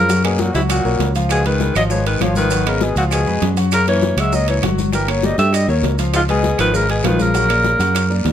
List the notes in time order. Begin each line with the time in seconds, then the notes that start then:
Already playing: F#2 C#3 A#4
0.09 F#3 F#4 F#5, high bongo, high conga, high timbale, long guiro, maracas
0.24 B2 A#3 G#4 A#4 C#5, high bongo, high conga, high timbale, claves, maracas
0.39 A#2 F#4, high bongo, high conga, low timbale, short guiro, maracas
0.54 C#2 G#2 F#3 E4 F#4 F#5, high conga, high timbale, short guiro, maracas
0.69 A#2 F#4, high bongo, high conga, high timbale, long guiro, claves, maracas
0.85 B1 A#3 A#4 C#5, high bongo, high conga, maracas
0.99 C#2, high bongo, low bongo, high timbale, low timbale, short guiro, maracas
1.15 F3 F4 F5, high bongo, high timbale, short guiro, maracas
1.29 B2 G#4, high bongo, high timbale, long guiro, claves, maracas
1.45 D#3 G#3 G#4 B4, high bongo, high timbale, maracas
1.60 high bongo, high conga, low timbale, short guiro, maracas
1.75 G#1 F3 F#3 F4 D#5 F5, high conga, high timbale, short guiro, claves, maracas
1.90 F3 G#3 G#4 B4 C#5, high bongo, high conga, long guiro, maracas
2.06 D#3 B4, high bongo, high conga, high timbale, maracas
2.20 G#1 F3 F4 C#5 F5, high bongo, low bongo, high conga, high timbale, low timbale, short guiro, claves, maracas
2.35 D#3 B4, high bongo, high conga, short guiro, maracas
2.50 F#3 F#4 F#5, high bongo, high conga, high timbale, long guiro, maracas
2.66 C#3 B3 A#4 B4 D#5, high bongo, high conga, high timbale, claves, maracas
2.81 B2 G#4, high bongo, high conga, low timbale, short guiro, maracas
2.96 C#2 A#2 F3 F4 F#4 F5, high timbale, short guiro, maracas
3.11 B2 G#4, high bongo, high conga, high timbale, long guiro, claves, maracas
3.27 F2 G#3 G#4 B4, high bongo, high conga, maracas
3.42 F#2, high bongo, low bongo, high timbale, low timbale, short guiro, maracas
3.57 F#3 F#4 F#5, high bongo, high timbale, short guiro, maracas
3.71 C#3 A#4, high bongo, high conga, high timbale, long guiro, claves, maracas
3.87 E3 A#3 A#4 C#5, high bongo, high timbale, maracas
4.02 high bongo, high conga, low timbale, short guiro, maracas
4.17 C#2 F#3 G#3 F#4 E5 F#5, high conga, high timbale, short guiro, claves, maracas
4.32 F#3 A#3 A#4 C#5 D#5, high bongo, long guiro, maracas
4.48 E3 C#5, high bongo, high conga, high timbale, maracas
4.62 G1 F#3 F#4 F#5, high bongo, low bongo, high conga, high timbale, low timbale, short guiro, claves, maracas
4.78 high bongo, high conga, short guiro, maracas
4.93 E3 G3 G4 A#4 G5, high bongo, high timbale, long guiro, maracas
5.08 F#3 A#3 A#4 C#5, high bongo, high timbale, claves, maracas
5.23 G3 D#5, high bongo, high conga, low timbale, short guiro, maracas
5.38 G2 G3 A3 G4 E5 G5, high timbale, short guiro, maracas
5.52 G3 D#5, high bongo, high conga, high timbale, long guiro, claves, maracas
5.68 D#2 F#3 A#3 A#4 C#5, high bongo, high conga, maracas
5.82 C#2, high bongo, low bongo, high conga, high timbale, low timbale, short guiro, maracas
5.98 F3 F4 F5, high bongo, high timbale, short guiro, maracas
6.13 G#2 F4, high bongo, high conga, high timbale, long guiro, claves, maracas
6.29 B2 G#3 G#4 B4, high bongo, high conga, high timbale, maracas
6.43 high bongo, high conga, low timbale, short guiro, maracas
6.58 G#1 D#3 F3 F4 B4 F5, high timbale, short guiro, claves, maracas
6.74 C#3 G#3 G#4 A#4 B4, high bongo, long guiro, maracas
6.89 B2 G#4, high bongo, high conga, high timbale, maracas
7.04 A#1 D#3 F3 F4 B4 F5, high bongo, low bongo, high conga, high timbale, low timbale, short guiro, claves, maracas
7.19 C#3 A#4, high bongo, high conga, short guiro, maracas
7.34 F#3 F#4 F#5, high bongo, high timbale, long guiro, maracas
7.49 A#3 A#4 D5, high bongo, high timbale, claves, maracas
7.64 high bongo, high conga, low timbale, short guiro, maracas
7.79 F#2 F#3 F#4 F#5, high conga, high timbale, short guiro, maracas
7.95 high bongo, high conga, high timbale, long guiro, claves, maracas
8.10 A#3 A#4 D5, high bongo, high conga, maracas
8.25 D#2, high bongo, low bongo, high conga, high timbale, low timbale, short guiro, maracas